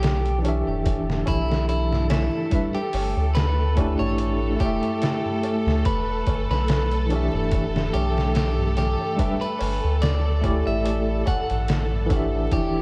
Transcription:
Already playing: analog synth bass B1, clean electric guitar G4, string machine A4
0.02 snare, closed hi-hat, tabla na
0.25 closed hi-hat, tabla na
0.39 tine electric piano E3 D4
0.44 tine electric piano G4, closed hi-hat, tabla na
0.49 tine electric piano E5
0.67 analog synth bass E1, tabla na, tabla ge
0.85 kick, closed hi-hat, tabla na
1.08 snare, tabla na, tabla ge
1.26 analog synth bass B1, clean electric guitar E4, kick, closed hi-hat, tabla na
1.50 snare, tabla na
1.69 clean electric guitar E4, closed hi-hat, tabla na
1.91 snare, tabla na, tabla ge
2.10 clean electric guitar E4, snare, closed hi-hat, tabla na
2.32 tabla na
2.50 tine electric piano G3 D4 B4, kick, closed hi-hat, tabla na
2.55 tine electric piano E5
2.75 clean electric guitar G4, closed hi-hat, tabla na
2.93 analog synth bass G1, open hi-hat, tabla na
3.17 analog synth bass D2, tabla na
3.35 clean electric guitar B4, snare, closed hi-hat, tabla na
3.58 tabla na
3.75 tine electric piano A3 E4 G4, kick, closed hi-hat, tabla na
3.80 tine electric piano D4
3.99 analog synth bass A1, clean electric guitar C#5, tabla na, tabla ge
4.18 closed hi-hat, tabla na
4.42 tabla na
4.56 analog synth bass E1, tine electric piano A3 E4, kick, closed hi-hat
4.60 clean electric guitar G4, tine electric piano G4, tabla na
4.66 tine electric piano E5
4.83 closed hi-hat, tabla na, tabla ge
5.02 snare, closed hi-hat, tabla na
5.25 tabla na, tabla ge
5.43 closed hi-hat, tabla na
5.66 analog synth bass D2, snare, tabla na
5.85 analog synth bass E1, clean electric guitar B4, kick, closed hi-hat, tabla na
6.09 tabla na
6.27 analog synth bass G1, kick, closed hi-hat, tabla na
6.50 analog synth bass B1, clean electric guitar B4, snare, tabla na
6.68 snare, closed hi-hat, tabla na
6.91 closed hi-hat, tabla na
7.06 tine electric piano E3 D4
7.10 tine electric piano G4, closed hi-hat, tabla na
7.16 tine electric piano E5
7.33 analog synth bass E1, tabla na, tabla ge
7.51 kick, closed hi-hat, tabla na
7.75 snare, tabla na, tabla ge
7.93 analog synth bass B1, clean electric guitar G4, closed hi-hat, tabla na
8.16 snare, tabla na
8.35 clean electric guitar G4, snare, closed hi-hat, tabla na
8.58 tabla na, tabla ge
8.77 clean electric guitar G4, snare, closed hi-hat, tabla na
9.00 tabla na
9.16 tine electric piano G3 D4 B4, kick, closed hi-hat, tabla na
9.21 tine electric piano E5
9.41 clean electric guitar B4, closed hi-hat, tabla na
9.59 analog synth bass G1, open hi-hat, tabla na
9.83 analog synth bass D2, tabla na
10.02 clean electric guitar D5, snare, closed hi-hat, tabla na
10.25 tabla na
10.41 tine electric piano A3 E4 G4, kick, closed hi-hat, tabla na
10.47 tine electric piano D5
10.66 analog synth bass A1, clean electric guitar E5, tabla na, tabla ge
10.84 closed hi-hat, tabla na
11.08 tabla na
11.26 clean electric guitar F#5, kick, closed hi-hat, tabla na
11.50 analog synth bass A1, closed hi-hat, tabla na, tabla ge
11.68 snare, closed hi-hat, tabla na
11.92 tabla na, tabla ge
12.06 tine electric piano E3 D4
12.10 tine electric piano G4, kick, closed hi-hat, tabla na
12.16 tine electric piano E5
12.34 tabla na
12.51 analog synth bass E1, celesta E4, string machine E4, clean electric guitar G4, kick, closed hi-hat, tabla na
12.76 tabla na

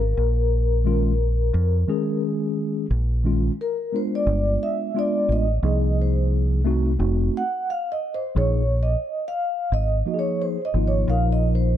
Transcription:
Already playing: fingered electric bass G#1, vibraphone A#4
0.17 fingered electric bass A#1
0.85 tine electric piano D#3 G#3 C#4 F4
1.54 fingered electric bass F2
1.87 tine electric piano D#3 G#3 C#4 G#4
2.90 fingered electric bass A#1
3.24 tine electric piano D#3 G#3 C#4 F4
3.61 vibraphone A#4
3.93 tine electric piano G#3 B3 D4 F4, vibraphone C5
4.15 vibraphone D5
4.27 fingered electric bass G1
4.63 vibraphone E5
4.94 tine electric piano G#3 B3 D4 F4
4.99 vibraphone D5
5.29 fingered electric bass A1, vibraphone D#5
5.63 fingered electric bass C2, tine electric piano F3 A#3 D#4 G#4
6.02 vibraphone C5
6.64 tine electric piano A3 C4 D#4 F#4
6.98 fingered electric bass F1, tine electric piano A3 C4 D#4 F#4
7.37 vibraphone F#5
7.70 vibraphone F5
7.92 vibraphone D#5
8.14 vibraphone C5
8.35 fingered electric bass A#1, tine electric piano F3 A#3 D#4 G#4, vibraphone C#5
8.83 vibraphone D#5
9.28 vibraphone F5
9.72 fingered electric bass G#1, vibraphone D#5
10.06 tine electric piano F3 A#3 D#4 F#4
10.14 tine electric piano G#4
10.19 vibraphone C#5
10.42 vibraphone C5
10.65 vibraphone D#5
10.74 fingered electric bass G#1, tine electric piano F3 A#3 D#4 F4
10.88 vibraphone C#5
11.08 fingered electric bass A#1, tine electric piano F3 A#3 D#4 A#4, vibraphone F5
11.32 vibraphone D#5
11.55 vibraphone C5

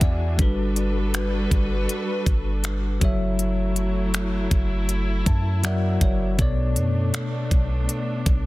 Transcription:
Already playing: string section E3 B3 D4 E4 F#4 G#4, tine electric piano E5 F#5 G#5
0.01 808-style bass E2, tine electric piano D5, kick, closed hi-hat
0.37 808-style bass G1, tine electric piano G3 D4 F#4 A4, string section G3 F#4 A4 B4, kick, closed hi-hat
0.42 tine electric piano B4
0.76 closed hi-hat
1.14 finger snap, closed hi-hat
1.51 808-style bass G1, kick, closed hi-hat
1.89 closed hi-hat
2.26 808-style bass G1, kick, closed hi-hat
2.64 finger snap, closed hi-hat
3.00 808-style bass F#1, tine electric piano F#3 F#4 A4 C#5, string section F#3 A3 E4, kick, closed hi-hat
3.05 tine electric piano E5
3.39 closed hi-hat
3.76 closed hi-hat
4.14 finger snap, closed hi-hat
4.51 808-style bass F#1, kick, closed hi-hat
4.89 closed hi-hat
5.26 808-style bass F#2, tine electric piano A5, kick, closed hi-hat
5.63 string section F#3 A#3, tine electric piano F#3 F#4 A#4 D5 E5 F#5, finger snap, closed hi-hat
6.01 808-style bass F#1, tine electric piano C#5, kick, closed hi-hat
6.37 808-style bass B1, tine electric piano B2 B3 A4 C#5, string section A3 B3 D4, kick, closed hi-hat
6.42 tine electric piano D5
6.76 808-style bass F#2, closed hi-hat
7.14 finger snap, closed hi-hat
7.51 808-style bass B1, kick, closed hi-hat
7.89 closed hi-hat
8.26 808-style bass B1, kick, closed hi-hat

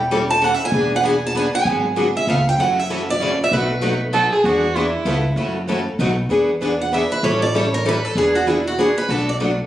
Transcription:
Already playing: upright bass E1, steel-string acoustic guitar G5
0.11 steel-string acoustic guitar E3 G3 C#4 E4 A4
0.30 steel-string acoustic guitar A5
0.41 steel-string acoustic guitar E3 G3 C#4 E4 A4 F#5
0.54 steel-string acoustic guitar E5
0.65 steel-string acoustic guitar G#5
0.72 upright bass E1, steel-string acoustic guitar E3 B3 D4 G#4 B4
0.96 steel-string acoustic guitar F#5
1.03 steel-string acoustic guitar E3 B3 D4 G#4 B4 G#5
1.27 steel-string acoustic guitar A5
1.35 steel-string acoustic guitar E3 B3 D4 G#4 B4 G#5
1.55 steel-string acoustic guitar G#5
1.65 upright bass G#1, steel-string acoustic guitar D3 F#3 B3 F#4 G#4
1.97 steel-string acoustic guitar D3 F#3 B3 F#4 G#4
2.17 steel-string acoustic guitar E5
2.27 upright bass C#2, steel-string acoustic guitar C#3 A3 B3 F4 A4 B4 F5
2.49 steel-string acoustic guitar G5
2.58 upright bass F#2, steel-string acoustic guitar C#3 E3 F#3 A3 C#4 E4 F#4 A4 F#5
2.79 steel-string acoustic guitar E5
2.90 steel-string acoustic guitar C#3 E3 F#3 A3 C#4 E4 F#4 A4
3.10 steel-string acoustic guitar D5
3.20 steel-string acoustic guitar C#3 E3 F#3 A3 C#4 E4 F#4 A4
3.44 steel-string acoustic guitar E5
3.51 upright bass B1, steel-string acoustic guitar B2 F#3 A3 D#4 F#4 B4
3.82 steel-string acoustic guitar B2 F#3 A3 D#4 F#4 B4
4.14 steel-string acoustic guitar B2 F#3 A3 D#4 F#4 B4, violin A4
4.32 violin G#4
4.44 upright bass E2, steel-string acoustic guitar E3 B3 D4 G#4 B4, violin F#4
4.75 steel-string acoustic guitar E3 B3 D4 G#4 B4, violin E4
5.05 upright bass C#2, steel-string acoustic guitar C#3 A3 B3 F4 A4 B4
5.36 upright bass F#2, steel-string acoustic guitar C#3 E3 F#3 A3 C#4 E4 F#4 A4
5.68 steel-string acoustic guitar C#3 E3 F#3 A3 C#4 E4 F#4 A4
5.99 upright bass B1, steel-string acoustic guitar B2 F#3 A3 D#4 F#4 B4
6.29 upright bass E2, steel-string acoustic guitar E3 B3 D4 G#4 B4
6.61 steel-string acoustic guitar E3 B3 D4 G#4 B4
6.82 steel-string acoustic guitar F#5
6.92 steel-string acoustic guitar E3 B3 D4 G#4 B4 E5
7.12 steel-string acoustic guitar B4
7.22 upright bass A1, steel-string acoustic guitar E3 G3 C#4 E4 A4 C#5
7.42 steel-string acoustic guitar D5
7.54 steel-string acoustic guitar E3 G3 C#4 E4 A4 C#5
7.74 steel-string acoustic guitar A#4
7.85 steel-string acoustic guitar E3 G3 C#4 E4 A4 B4
8.05 steel-string acoustic guitar A4
8.15 upright bass E1, steel-string acoustic guitar E3 B3 D4 G#4 B4
8.35 steel-string acoustic guitar F#4
8.47 steel-string acoustic guitar E3 B3 D4 E4 G#4 B4
8.67 steel-string acoustic guitar F#4
8.78 steel-string acoustic guitar E3 B3 D4 G#4 B4
8.98 steel-string acoustic guitar B4
9.09 upright bass B1, steel-string acoustic guitar B2 F#3 A3 D4 F#4 A4 B4
9.29 steel-string acoustic guitar D5
9.40 steel-string acoustic guitar B2 F#3 A3 D4 F#4 B4

